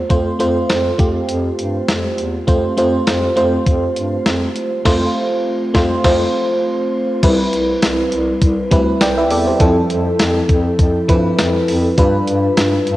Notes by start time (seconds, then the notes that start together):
Already playing: A3 C4 F4 C5
0.10 F2 A3 C4 F4 C5, kick, closed hi-hat
0.39 F2 A3 C4 F4 C5, closed hi-hat
0.69 F2, snare, closed hi-hat
0.98 F2 A3 C4 F4 G4, kick, closed hi-hat
1.29 F2, closed hi-hat
1.59 G2, closed hi-hat
1.88 F2, snare, closed hi-hat
2.18 E2, closed hi-hat
2.47 F2 A3 C4 F4 C5, kick, closed hi-hat
2.77 F2 A3 C4 F4 C5, closed hi-hat
3.07 F2, snare, closed hi-hat
3.36 F2 A3 C4 F4 C5, closed hi-hat
3.67 F2, kick, closed hi-hat
3.96 G2, closed hi-hat
4.26 F2, snare, closed hi-hat
4.56 closed hi-hat
4.85 F2 A3 C4 F4 C5, kick, snare, crash
5.74 F2 A3 C4 F4 C5, kick, snare
6.04 F2 A3 C4 F4 C5, kick, snare, crash
7.23 C2 G3 C4 E4 B4, kick, closed hi-hat, crash
7.53 C2, closed hi-hat
7.82 C2, snare, closed hi-hat, tambourine
8.12 C2, closed hi-hat
8.42 C2, kick, closed hi-hat
8.71 D2 G3 C4 E4 B4, kick, closed hi-hat
9.01 C2 D5 G5, snare, closed hi-hat, tambourine
9.18 B4 E5
9.31 E2 A4 D5, open hi-hat
9.47 G4 C5
9.60 F2 F3 C4 E4 A4, kick, closed hi-hat
9.90 F2, closed hi-hat
10.19 F2, snare, closed hi-hat, tambourine
10.49 F2, kick, closed hi-hat
10.79 F2, kick, closed hi-hat
11.08 G2 F3 C4 E4 B4, kick, closed hi-hat
11.39 F2, snare, closed hi-hat, tambourine
11.68 F2, open hi-hat
11.98 G2 G3 D4 F4 B4, kick, closed hi-hat
12.28 G2, closed hi-hat
12.57 G2, snare, closed hi-hat, tambourine
12.87 G2, closed hi-hat